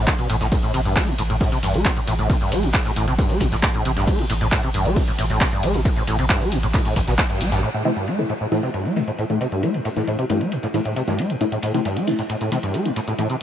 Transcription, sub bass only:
0, 0, Header, 1, 2, 480
1, 0, Start_track
1, 0, Key_signature, 0, "minor"
1, 0, Tempo, 444444
1, 561, Time_signature, 4, 2, 24, 8
1, 14499, End_track
2, 0, Start_track
2, 0, Title_t, "Sub bass"
2, 0, Program_c, 0, 38
2, 321, Note_on_c, 0, 33, 103
2, 437, Note_off_c, 0, 33, 0
2, 443, Note_on_c, 0, 33, 84
2, 559, Note_off_c, 0, 33, 0
2, 801, Note_on_c, 0, 33, 100
2, 916, Note_off_c, 0, 33, 0
2, 923, Note_on_c, 0, 33, 80
2, 1039, Note_off_c, 0, 33, 0
2, 1281, Note_on_c, 0, 33, 100
2, 1397, Note_off_c, 0, 33, 0
2, 1403, Note_on_c, 0, 33, 84
2, 1519, Note_off_c, 0, 33, 0
2, 1761, Note_on_c, 0, 33, 100
2, 1876, Note_off_c, 0, 33, 0
2, 1883, Note_on_c, 0, 33, 81
2, 1999, Note_off_c, 0, 33, 0
2, 2241, Note_on_c, 0, 33, 102
2, 2357, Note_off_c, 0, 33, 0
2, 2363, Note_on_c, 0, 33, 84
2, 2479, Note_off_c, 0, 33, 0
2, 2721, Note_on_c, 0, 33, 99
2, 2836, Note_off_c, 0, 33, 0
2, 2843, Note_on_c, 0, 33, 84
2, 2959, Note_off_c, 0, 33, 0
2, 3201, Note_on_c, 0, 33, 101
2, 3316, Note_off_c, 0, 33, 0
2, 3322, Note_on_c, 0, 33, 81
2, 3438, Note_off_c, 0, 33, 0
2, 3681, Note_on_c, 0, 33, 102
2, 3796, Note_off_c, 0, 33, 0
2, 3803, Note_on_c, 0, 33, 79
2, 3918, Note_off_c, 0, 33, 0
2, 4161, Note_on_c, 0, 33, 99
2, 4276, Note_off_c, 0, 33, 0
2, 4283, Note_on_c, 0, 33, 83
2, 4398, Note_off_c, 0, 33, 0
2, 4641, Note_on_c, 0, 33, 100
2, 4757, Note_off_c, 0, 33, 0
2, 4763, Note_on_c, 0, 33, 80
2, 4879, Note_off_c, 0, 33, 0
2, 5121, Note_on_c, 0, 33, 99
2, 5237, Note_off_c, 0, 33, 0
2, 5244, Note_on_c, 0, 33, 81
2, 5359, Note_off_c, 0, 33, 0
2, 5601, Note_on_c, 0, 33, 102
2, 5717, Note_off_c, 0, 33, 0
2, 5723, Note_on_c, 0, 33, 78
2, 5839, Note_off_c, 0, 33, 0
2, 6081, Note_on_c, 0, 33, 100
2, 6196, Note_off_c, 0, 33, 0
2, 6203, Note_on_c, 0, 33, 86
2, 6319, Note_off_c, 0, 33, 0
2, 6562, Note_on_c, 0, 33, 101
2, 6677, Note_off_c, 0, 33, 0
2, 6683, Note_on_c, 0, 33, 84
2, 6799, Note_off_c, 0, 33, 0
2, 7041, Note_on_c, 0, 33, 101
2, 7157, Note_off_c, 0, 33, 0
2, 7163, Note_on_c, 0, 33, 81
2, 7279, Note_off_c, 0, 33, 0
2, 7520, Note_on_c, 0, 33, 100
2, 7636, Note_off_c, 0, 33, 0
2, 7643, Note_on_c, 0, 33, 81
2, 7759, Note_off_c, 0, 33, 0
2, 8001, Note_on_c, 0, 33, 102
2, 8117, Note_off_c, 0, 33, 0
2, 8123, Note_on_c, 0, 33, 85
2, 8239, Note_off_c, 0, 33, 0
2, 14499, End_track
0, 0, End_of_file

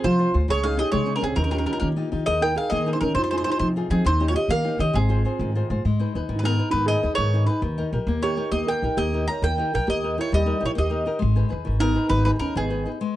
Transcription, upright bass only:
0, 0, Header, 1, 2, 480
1, 0, Start_track
1, 0, Key_signature, -4, "major"
1, 0, Tempo, 298211
1, 768, Time_signature, 6, 3, 24, 8
1, 9400, Key_signature, 5, "minor"
1, 21186, End_track
2, 0, Start_track
2, 0, Title_t, "Upright bass"
2, 0, Program_c, 0, 32
2, 69, Note_on_c, 0, 53, 102
2, 377, Note_off_c, 0, 53, 0
2, 557, Note_on_c, 0, 38, 84
2, 701, Note_off_c, 0, 38, 0
2, 783, Note_on_c, 0, 37, 83
2, 1242, Note_off_c, 0, 37, 0
2, 1504, Note_on_c, 0, 49, 85
2, 1809, Note_off_c, 0, 49, 0
2, 1974, Note_on_c, 0, 37, 75
2, 2122, Note_off_c, 0, 37, 0
2, 2196, Note_on_c, 0, 39, 91
2, 2664, Note_off_c, 0, 39, 0
2, 2928, Note_on_c, 0, 51, 86
2, 3241, Note_off_c, 0, 51, 0
2, 3426, Note_on_c, 0, 51, 71
2, 3573, Note_off_c, 0, 51, 0
2, 3662, Note_on_c, 0, 39, 85
2, 4125, Note_off_c, 0, 39, 0
2, 4369, Note_on_c, 0, 51, 91
2, 4683, Note_off_c, 0, 51, 0
2, 4853, Note_on_c, 0, 51, 84
2, 5005, Note_off_c, 0, 51, 0
2, 5066, Note_on_c, 0, 41, 83
2, 5539, Note_off_c, 0, 41, 0
2, 5794, Note_on_c, 0, 53, 87
2, 6111, Note_off_c, 0, 53, 0
2, 6280, Note_on_c, 0, 53, 94
2, 6434, Note_off_c, 0, 53, 0
2, 6527, Note_on_c, 0, 39, 98
2, 6989, Note_off_c, 0, 39, 0
2, 7219, Note_on_c, 0, 51, 77
2, 7537, Note_off_c, 0, 51, 0
2, 7714, Note_on_c, 0, 51, 81
2, 7867, Note_off_c, 0, 51, 0
2, 7954, Note_on_c, 0, 32, 95
2, 8423, Note_off_c, 0, 32, 0
2, 8681, Note_on_c, 0, 44, 90
2, 8997, Note_off_c, 0, 44, 0
2, 9176, Note_on_c, 0, 44, 90
2, 9326, Note_off_c, 0, 44, 0
2, 9414, Note_on_c, 0, 44, 85
2, 9726, Note_off_c, 0, 44, 0
2, 9902, Note_on_c, 0, 39, 64
2, 9974, Note_off_c, 0, 39, 0
2, 10122, Note_on_c, 0, 44, 72
2, 10589, Note_off_c, 0, 44, 0
2, 10838, Note_on_c, 0, 44, 88
2, 11152, Note_off_c, 0, 44, 0
2, 11326, Note_on_c, 0, 39, 62
2, 11400, Note_off_c, 0, 39, 0
2, 11550, Note_on_c, 0, 44, 84
2, 12015, Note_off_c, 0, 44, 0
2, 12264, Note_on_c, 0, 39, 94
2, 12578, Note_off_c, 0, 39, 0
2, 12757, Note_on_c, 0, 34, 81
2, 12831, Note_off_c, 0, 34, 0
2, 12984, Note_on_c, 0, 39, 90
2, 13454, Note_off_c, 0, 39, 0
2, 13710, Note_on_c, 0, 39, 80
2, 14027, Note_off_c, 0, 39, 0
2, 14204, Note_on_c, 0, 34, 61
2, 14279, Note_off_c, 0, 34, 0
2, 14437, Note_on_c, 0, 39, 80
2, 14911, Note_off_c, 0, 39, 0
2, 15165, Note_on_c, 0, 39, 88
2, 15481, Note_off_c, 0, 39, 0
2, 15687, Note_on_c, 0, 34, 69
2, 15752, Note_off_c, 0, 34, 0
2, 15902, Note_on_c, 0, 39, 76
2, 16364, Note_off_c, 0, 39, 0
2, 16623, Note_on_c, 0, 39, 86
2, 16931, Note_off_c, 0, 39, 0
2, 17105, Note_on_c, 0, 34, 71
2, 17176, Note_off_c, 0, 34, 0
2, 17346, Note_on_c, 0, 39, 75
2, 17805, Note_off_c, 0, 39, 0
2, 18064, Note_on_c, 0, 32, 101
2, 18371, Note_off_c, 0, 32, 0
2, 18545, Note_on_c, 0, 39, 84
2, 18615, Note_off_c, 0, 39, 0
2, 18782, Note_on_c, 0, 32, 82
2, 19241, Note_off_c, 0, 32, 0
2, 19480, Note_on_c, 0, 32, 92
2, 19795, Note_off_c, 0, 32, 0
2, 19948, Note_on_c, 0, 39, 73
2, 20030, Note_off_c, 0, 39, 0
2, 20209, Note_on_c, 0, 32, 75
2, 20679, Note_off_c, 0, 32, 0
2, 21186, End_track
0, 0, End_of_file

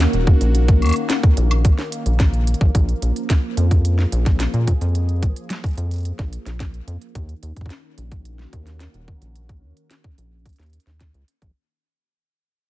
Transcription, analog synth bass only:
0, 0, Header, 1, 2, 480
1, 0, Start_track
1, 0, Tempo, 550459
1, 476, Time_signature, 4, 2, 24, 8
1, 11066, End_track
2, 0, Start_track
2, 0, Title_t, "Analog synth bass"
2, 0, Program_c, 0, 38
2, 116, Note_on_c, 0, 27, 104
2, 283, Note_off_c, 0, 27, 0
2, 357, Note_on_c, 0, 34, 84
2, 716, Note_on_c, 0, 39, 76
2, 729, Note_off_c, 0, 34, 0
2, 800, Note_off_c, 0, 39, 0
2, 1196, Note_on_c, 0, 34, 88
2, 1497, Note_off_c, 0, 34, 0
2, 1796, Note_on_c, 0, 34, 78
2, 2217, Note_off_c, 0, 34, 0
2, 2276, Note_on_c, 0, 34, 77
2, 2359, Note_off_c, 0, 34, 0
2, 2395, Note_on_c, 0, 34, 96
2, 2562, Note_off_c, 0, 34, 0
2, 2636, Note_on_c, 0, 34, 77
2, 2719, Note_off_c, 0, 34, 0
2, 3115, Note_on_c, 0, 41, 89
2, 3537, Note_off_c, 0, 41, 0
2, 3596, Note_on_c, 0, 34, 98
2, 3897, Note_off_c, 0, 34, 0
2, 3956, Note_on_c, 0, 46, 98
2, 4123, Note_off_c, 0, 46, 0
2, 4196, Note_on_c, 0, 41, 86
2, 4557, Note_on_c, 0, 34, 75
2, 4570, Note_off_c, 0, 41, 0
2, 4640, Note_off_c, 0, 34, 0
2, 5035, Note_on_c, 0, 41, 89
2, 5337, Note_off_c, 0, 41, 0
2, 5397, Note_on_c, 0, 34, 84
2, 5563, Note_off_c, 0, 34, 0
2, 5635, Note_on_c, 0, 34, 76
2, 5937, Note_off_c, 0, 34, 0
2, 5995, Note_on_c, 0, 41, 88
2, 6079, Note_off_c, 0, 41, 0
2, 6236, Note_on_c, 0, 39, 96
2, 6403, Note_off_c, 0, 39, 0
2, 6477, Note_on_c, 0, 39, 77
2, 6560, Note_off_c, 0, 39, 0
2, 6957, Note_on_c, 0, 34, 88
2, 7378, Note_off_c, 0, 34, 0
2, 7437, Note_on_c, 0, 39, 97
2, 7738, Note_off_c, 0, 39, 0
2, 7797, Note_on_c, 0, 27, 98
2, 7963, Note_off_c, 0, 27, 0
2, 8037, Note_on_c, 0, 34, 82
2, 8396, Note_on_c, 0, 39, 74
2, 8410, Note_off_c, 0, 34, 0
2, 8480, Note_off_c, 0, 39, 0
2, 8878, Note_on_c, 0, 34, 86
2, 9178, Note_off_c, 0, 34, 0
2, 9237, Note_on_c, 0, 39, 85
2, 9403, Note_off_c, 0, 39, 0
2, 9477, Note_on_c, 0, 39, 76
2, 9712, Note_off_c, 0, 39, 0
2, 9717, Note_on_c, 0, 37, 83
2, 9800, Note_off_c, 0, 37, 0
2, 9957, Note_on_c, 0, 34, 96
2, 10040, Note_off_c, 0, 34, 0
2, 11066, End_track
0, 0, End_of_file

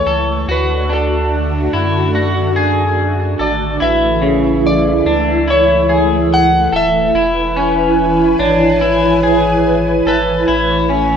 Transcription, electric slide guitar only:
0, 0, Header, 1, 2, 480
1, 0, Start_track
1, 0, Key_signature, 3, "major"
1, 0, Tempo, 833333
1, 277, Time_signature, 4, 2, 24, 8
1, 6432, End_track
2, 0, Start_track
2, 0, Title_t, "Electric slide guitar"
2, 0, Program_c, 0, 29
2, 0, Note_on_c, 0, 73, 89
2, 294, Note_off_c, 0, 73, 0
2, 296, Note_on_c, 0, 71, 75
2, 533, Note_off_c, 0, 71, 0
2, 534, Note_on_c, 0, 69, 76
2, 1463, Note_off_c, 0, 69, 0
2, 1965, Note_on_c, 0, 74, 60
2, 2202, Note_on_c, 0, 76, 82
2, 2208, Note_off_c, 0, 74, 0
2, 2685, Note_off_c, 0, 76, 0
2, 2687, Note_on_c, 0, 74, 68
2, 3168, Note_off_c, 0, 74, 0
2, 3170, Note_on_c, 0, 73, 84
2, 3650, Note_on_c, 0, 78, 94
2, 3658, Note_off_c, 0, 73, 0
2, 3890, Note_off_c, 0, 78, 0
2, 3894, Note_on_c, 0, 76, 81
2, 4823, Note_off_c, 0, 76, 0
2, 5807, Note_on_c, 0, 71, 83
2, 6259, Note_off_c, 0, 71, 0
2, 6432, End_track
0, 0, End_of_file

